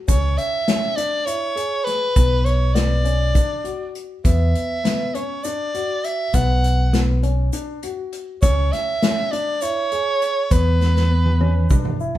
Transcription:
0.08 0.36 C#2 medium
0.08 0.59 C#4 medium
0.08 0.39 C#5 medium
0.08 kick loud
0.08 closed hi-hat medium
0.08 shaker medium
0.38 0.98 E5 loud
0.38 closed hi-hat medium
0.68 0.93 C#4 medium
0.68 snare loud
0.68 closed hi-hat medium
0.96 1.23 D4 medium
0.96 1.28 D5 medium
0.96 closed hi-hat medium
1.26 1.52 E4 medium
1.26 1.86 C#5 loud
1.26 closed hi-hat medium
1.26 shaker medium
1.56 2.07 G#4 medium
1.56 closed hi-hat medium
1.84 2.46 B4 medium
1.84 snare soft
1.84 closed hi-hat medium
2.16 3.32 B1 medium
2.16 2.67 B3 medium
2.16 kick loud
2.16 closed hi-hat medium
2.16 shaker medium
2.45 2.76 C#5 medium
2.45 closed hi-hat medium
2.74 3.01 B3 medium
2.74 3.94 D5 medium
2.74 snare loud
2.74 closed hi-hat medium
3.05 3.30 C#4 medium
3.05 closed hi-hat medium
3.35 3.60 D4 medium
3.35 kick loud
3.35 closed hi-hat medium
3.35 shaker medium
3.64 4.16 F#4 medium
3.64 closed hi-hat medium
3.64 shaker soft
3.95 closed hi-hat medium
4.24 4.53 E2 medium
4.24 4.75 B3 medium
4.24 5.16 E5 medium
4.24 kick medium
4.24 closed hi-hat medium
4.24 shaker soft
4.55 closed hi-hat medium
4.84 5.09 B3 medium
4.84 snare loud
4.84 closed hi-hat medium
5.14 5.40 C#4 medium
5.14 5.46 C#5 medium
5.14 closed hi-hat medium
5.44 5.70 D4 medium
5.44 6.06 D5 medium
5.44 closed hi-hat medium
5.44 shaker medium
5.74 6.25 F#4 medium
5.74 closed hi-hat medium
6.04 6.36 E5 loud
6.04 closed hi-hat medium
6.34 7.49 B1 loud
6.34 6.84 B3 medium
6.34 7.01 F#5 loud
6.34 kick loud
6.34 closed hi-hat medium
6.34 shaker medium
6.64 closed hi-hat medium
6.93 7.19 B3 medium
6.93 snare loud
6.93 closed hi-hat medium
7.23 7.48 C#4 medium
7.23 closed hi-hat medium
7.53 7.78 D4 medium
7.53 closed hi-hat medium
7.53 shaker medium
7.83 8.34 F#4 medium
7.83 closed hi-hat medium
8.13 closed hi-hat medium
8.42 8.70 C#2 medium
8.42 8.93 C#4 medium
8.42 8.74 C#5 medium
8.42 kick loud
8.42 closed hi-hat medium
8.42 shaker medium
8.73 9.33 E5 loud
8.73 snare soft
8.73 closed hi-hat medium
9.02 9.28 C#4 medium
9.02 snare loud
9.02 closed hi-hat medium
9.32 9.57 D4 medium
9.32 9.64 D5 medium
9.32 closed hi-hat medium
9.61 9.87 E4 medium
9.61 10.54 C#5 loud
9.61 closed hi-hat medium
9.61 shaker medium
9.92 10.42 G#4 medium
9.92 closed hi-hat medium
10.22 closed hi-hat medium
10.51 11.66 E2 medium
10.51 11.01 B3 medium
10.51 12.01 B4 medium
10.51 kick loud
10.51 closed hi-hat medium
10.51 shaker medium
10.81 snare medium
10.81 shaker soft
10.96 snare medium
11.10 11.36 B3 medium
11.26 high tom medium
11.40 11.66 C#4 medium
11.40 high tom medium
11.70 11.96 D4 medium
11.70 kick loud
11.70 mid tom medium
11.70 shaker medium
11.85 mid tom medium
12.00 12.18 E4 medium
12.00 shaker soft

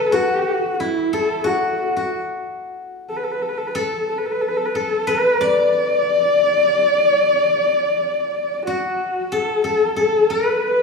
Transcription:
0.00 0.16 A4 medium
0.00 1.13 A4 medium
0.00 1.77 B4 medium
0.12 1.44 F#4 medium
0.12 0.74 F#4 medium
0.74 0.83 F#4 medium
0.80 3.41 E4 medium
0.80 1.16 E4 medium
1.13 3.32 A4 medium
1.13 1.48 A4 medium
1.44 1.96 F#4 medium
1.44 2.12 F#4 medium
1.96 4.39 F#4 medium
3.09 3.18 A4 medium
3.17 3.25 B4 medium
3.23 3.33 A4 medium
3.31 3.43 B4 medium
3.42 3.51 A4 medium
3.49 3.59 B4 medium
3.57 3.69 A4 medium
3.67 3.78 B4 medium
3.75 4.75 A4 medium
3.75 4.08 A4 medium
4.09 4.19 A4 medium
4.18 4.27 B4 medium
4.26 4.33 A4 medium
4.31 4.43 B4 medium
4.41 4.50 A4 medium
4.48 4.59 B4 medium
4.57 4.67 A4 medium
4.66 4.77 B4 medium
4.75 6.95 A4 medium
4.75 5.10 A4 medium
5.07 7.12 B4 medium
5.07 5.42 B4 medium
5.41 8.66 D5 loud
5.41 8.64 D5 medium
8.66 9.34 F#4 medium
8.66 10.83 F#4 medium
9.32 9.64 A4 medium
9.32 9.65 A4 medium
9.64 9.96 A4 medium
9.96 10.83 A4 medium
9.96 10.33 A4 medium
10.30 10.83 B4 medium

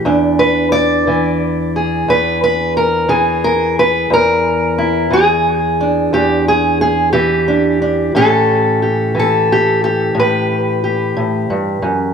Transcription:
0.00 1.06 E3 medium
0.05 2.08 E2 medium
0.05 4.06 D4 soft
0.39 0.72 B4 medium
0.72 2.07 D5 medium
1.07 3.08 E3 medium
1.76 3.08 G#4 soft
2.08 4.09 E2 medium
2.08 2.43 B4 medium
2.44 2.76 B4 medium
2.77 3.10 A#4 medium
3.09 5.10 E3 medium
3.09 4.10 G#4 medium
3.44 3.77 A#4 medium
3.79 4.11 B4 medium
4.10 6.12 E2 medium
4.10 5.13 A#4 medium
4.78 5.13 E4 soft
5.11 7.13 E3 medium
5.11 6.13 G#4 medium
5.81 7.47 D4 soft
6.13 8.14 E2 medium
6.13 6.47 G4 medium
6.48 6.80 G#4 medium
6.81 7.12 G#4 medium
7.13 8.15 E3 medium
7.13 8.14 G4 medium
7.48 7.81 D4 soft
7.82 8.11 D4 soft
8.15 10.13 A2 medium
8.15 9.14 E3 soft
8.15 12.14 C#4 soft
8.15 8.81 G4 soft
8.15 9.17 A4 medium
8.82 9.50 G4 soft
9.15 12.14 E3 medium
9.19 10.19 A4 medium
9.52 9.83 G4 medium
9.84 10.83 G4 medium
10.15 11.15 A2 medium
10.20 12.14 B4 medium
10.84 12.14 G4 soft
11.17 11.50 A2 medium
11.50 11.82 G2 medium
11.82 12.14 F#2 medium

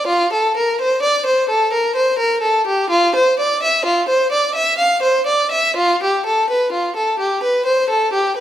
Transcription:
0.07 0.31 F4 medium
0.33 0.56 A4 medium
0.56 0.79 A#4 medium
0.81 1.03 C5 medium
1.02 1.26 D5 medium
1.26 1.49 C5 medium
1.49 1.72 A4 medium
1.73 1.96 A#4 medium
1.96 2.19 C5 medium
2.19 2.42 A#4 medium
2.42 2.65 A4 medium
2.67 2.90 G4 medium
2.90 3.13 F4 medium
3.15 3.38 C5 medium
3.39 3.61 D5 medium
3.63 3.85 E5 medium
3.85 4.07 F4 medium
4.08 4.31 C5 medium
4.32 4.54 D5 medium
4.55 4.77 E5 medium
4.78 5.01 F5 medium
5.02 5.25 C5 medium
5.26 5.50 D5 medium
5.51 5.75 E5 medium
5.76 6.00 F4 medium
6.03 6.25 G4 medium
6.26 6.49 A4 medium
6.50 6.72 B4 medium
6.72 6.95 F4 medium
6.96 7.19 A4 medium
7.19 7.42 G4 medium
7.43 7.66 B4 medium
7.66 7.89 C5 medium
7.90 8.13 A4 medium
8.13 8.36 G4 medium
8.36 8.40 B4 medium

